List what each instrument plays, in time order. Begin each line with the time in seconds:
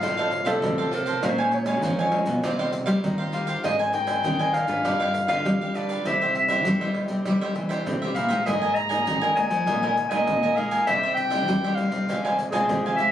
Already playing: nylon-string guitar F3 C4 F4, clarinet F5
0.01 nylon-string guitar A2, cavaquinho F4 A4 C5 F5, pandeiro, tamborim, shaker, surdo
0.17 cavaquinho A4 C5 F5, pandeiro, tamborim, shaker
0.31 muted cavaquinho stroke, pandeiro
0.45 nylon-string guitar C3 F3 C4 F4, cavaquinho A4 C5 F5, clarinet A4, pandeiro, tamborim, shaker, surdo
0.62 nylon-string guitar A2 C3, pandeiro, tamborim, shaker, surdo
0.78 cavaquinho A4 C5 F5, pandeiro, shaker
0.91 nylon-string guitar F3 C4 F4, cavaquinho F4 A4 C5 F5, clarinet A#4, pandeiro, shaker, surdo
1.06 cavaquinho A4 C5 F5, pandeiro, shaker, surdo
1.23 nylon-string guitar A#2 G#3 C#4 F4, cavaquinho A#4 C#5 F5 G#5, clarinet C5, pandeiro, tamborim, shaker, surdo
1.38 cavaquinho C#5 F5 G#5, pandeiro, shaker
1.51 clarinet C#5, muted cavaquinho stroke, pandeiro
1.66 nylon-string guitar G#3 C#4 F4, cavaquinho C#5 F5 G#5, pandeiro, tamborim, shaker, surdo
1.82 nylon-string guitar F3, cavaquinho A#4 C#5 F5 G#5, pandeiro, shaker, surdo
1.99 cavaquinho C#5 F5 G#5, pandeiro, tamborim, shaker
2.12 nylon-string guitar G#3 C#4 F4, pandeiro, tamborim, surdo
2.26 nylon-string guitar B2, pandeiro, shaker
2.44 nylon-string guitar C3 G3 C4 F4, cavaquinho F4 G4 C5 F5, pandeiro, tamborim, shaker, surdo
2.59 cavaquinho G4 C5 F5, pandeiro, tamborim, shaker
2.72 muted cavaquinho stroke, pandeiro, shaker
2.86 nylon-string guitar G3 C4 F4, cavaquinho G4 C5 F5, pandeiro, tamborim, shaker, surdo
3.04 nylon-string guitar D#3 G3, pandeiro, tamborim, shaker, surdo
3.18 cavaquinho G4 C5 F5, pandeiro, shaker
3.32 nylon-string guitar G3 C4 F4, cavaquinho F4 G4 C5 F5, clarinet F5, pandeiro, shaker
3.47 cavaquinho G4 C5 F5, pandeiro, shaker, surdo
3.63 nylon-string guitar G#2 G#3 C4 D#4 A#4, cavaquinho A#4 C5 G#5, clarinet D#5, pandeiro, tamborim, shaker, surdo
3.79 cavaquinho C5 G#5, pandeiro, shaker
3.92 nylon-string guitar C4 D#4 A#4, clarinet G5, muted cavaquinho stroke, pandeiro, shaker
4.07 cavaquinho C5 G#5, pandeiro, tamborim, shaker, surdo
4.24 nylon-string guitar D#3, cavaquinho A#4 C5 G#5, pandeiro, shaker, surdo
4.39 nylon-string guitar C4 D#4 A#4, cavaquinho C5 G#5, pandeiro, tamborim, shaker
4.54 clarinet F5, pandeiro, tamborim, shaker, surdo
4.68 nylon-string guitar G#2 D4 F4 B4, pandeiro, shaker
4.85 nylon-string guitar G2 G3, cavaquinho D4 G4 B4 F5, pandeiro, tamborim, shaker, surdo
5.00 cavaquinho G4 B4 F5, pandeiro, tamborim, shaker
5.14 muted cavaquinho stroke, pandeiro, shaker
5.28 nylon-string guitar D3 D4 F4 B4, cavaquinho G4 B4 F5, clarinet F5, pandeiro, tamborim, shaker, surdo
5.45 nylon-string guitar D3 G3, pandeiro, tamborim, shaker, surdo
5.61 cavaquinho G4 B4 F5, pandeiro, shaker
5.74 nylon-string guitar D4 F4 B4, cavaquinho D4 G4 B4 F5, clarinet D5, pandeiro, shaker, surdo
5.89 cavaquinho G4 B4 F5, pandeiro, shaker, surdo
6.05 nylon-string guitar C3 G3 C4 E4, cavaquinho E4 G4 C5 E5, clarinet E5, pandeiro, tamborim, shaker, surdo
6.21 cavaquinho G4 C5 E5, pandeiro, shaker
6.35 clarinet E5, muted cavaquinho stroke, pandeiro
6.48 nylon-string guitar G3 C4 E4, cavaquinho G4 C5 E5, pandeiro, tamborim, shaker, surdo
6.65 nylon-string guitar G2 G3, cavaquinho E4 G4 C5 E5, pandeiro, shaker, surdo
6.81 nylon-string guitar G3 C4 E4, cavaquinho G4 C5 E5, pandeiro, tamborim, shaker
6.94 pandeiro, tamborim, surdo
7.08 nylon-string guitar C3, pandeiro, shaker
7.25 nylon-string guitar C3 G3 C4 E4, cavaquinho E4 G4 C5 E5, pandeiro, tamborim, shaker, surdo
7.41 cavaquinho G4 C5 E5, pandeiro, tamborim, shaker
7.55 nylon-string guitar E3 G3 C4 E4, muted cavaquinho stroke, pandeiro
7.69 cavaquinho G4 C5 E5, pandeiro, tamborim, shaker, surdo
7.86 nylon-string guitar G2 C3, pandeiro, tamborim, shaker, surdo
8.02 nylon-string guitar G3 C4 E4, cavaquinho G4 C5 E5, pandeiro, shaker
8.15 nylon-string guitar A#2, cavaquinho E4 G4 C5 E5, clarinet F5, pandeiro, shaker, surdo
8.29 nylon-string guitar G#3 A#3 D#4, cavaquinho G4 C5 E5, pandeiro, shaker, surdo
8.46 nylon-string guitar G#2, cavaquinho G#4 A#4 D#5 G#5, clarinet D#5, pandeiro, tamborim, shaker, surdo
8.62 cavaquinho A#4 D#5 G#5, pandeiro, shaker
8.75 clarinet A#5, muted cavaquinho stroke, pandeiro, shaker
8.89 nylon-string guitar G#3 A#3 D#4, cavaquinho A#4 D#5 G#5, pandeiro, tamborim, shaker, surdo
9.06 nylon-string guitar D#3, cavaquinho G#4 A#4 D#5 G#5, pandeiro, shaker, surdo
9.21 cavaquinho A#4 D#5 G#5, pandeiro, tamborim, shaker
9.35 nylon-string guitar G#3 A#3 D#4, clarinet G#5, pandeiro, tamborim, shaker, surdo
9.50 nylon-string guitar F3, pandeiro, shaker
9.66 nylon-string guitar A#2 G#3 A#3 D#4, cavaquinho G#4 A#4 D#5 G#5, pandeiro, tamborim, shaker, surdo
9.83 cavaquinho A#4 D#5 G#5, pandeiro, tamborim, shaker
9.97 muted cavaquinho stroke, pandeiro, shaker
10.10 nylon-string guitar A#2 G#3 A#3 D#4, cavaquinho A#4 D#5 G#5, clarinet D#5, pandeiro, tamborim, shaker, surdo
10.27 nylon-string guitar A#2, pandeiro, tamborim, shaker, surdo
10.43 cavaquinho A#4 D#5 G#5, pandeiro, shaker
10.56 nylon-string guitar G#3 A#3 D#4, cavaquinho G#4 A#4 D#5 G#5, clarinet F5, pandeiro, surdo
10.71 cavaquinho A#4 D#5 G#5, pandeiro, shaker, surdo
10.87 nylon-string guitar C3 G3 C4 E4, cavaquinho E4 G4 C5 E5, clarinet E5, pandeiro, tamborim, shaker, surdo
11.03 cavaquinho G4 C5 E5, pandeiro, shaker
11.14 clarinet G5, muted cavaquinho stroke, pandeiro, shaker
11.30 nylon-string guitar G3 C4 E4, cavaquinho G4 C5 E5, pandeiro, tamborim, shaker, surdo
11.48 nylon-string guitar G2 G3, cavaquinho E4 G4 C5 E5, pandeiro, shaker, surdo
11.64 cavaquinho G4 C5 E5, pandeiro, tamborim, shaker
11.75 nylon-string guitar G3, clarinet F5, pandeiro, tamborim, shaker, surdo
11.79 nylon-string guitar C4 E4
11.92 nylon-string guitar C3, pandeiro, shaker
12.08 nylon-string guitar C3 F3 G#3 C4 F4, cavaquinho G4 C5 F5 G#5, pandeiro, tamborim, shaker, surdo
12.25 cavaquinho C5 F5 G#5, pandeiro, tamborim, shaker
12.39 muted cavaquinho stroke, pandeiro, shaker
12.51 nylon-string guitar C3 G#3 C4 F4, clarinet G#4, cavaquinho C5 F5 G#5, pandeiro, tamborim, shaker, surdo
12.69 nylon-string guitar C3 F3, pandeiro, tamborim, shaker, surdo
12.85 cavaquinho C5 F5 G#5, pandeiro, shaker
12.96 nylon-string guitar G#3, cavaquinho G4 C5, clarinet E5, pandeiro, shaker
13.00 nylon-string guitar C4 F4, cavaquinho F5 G#5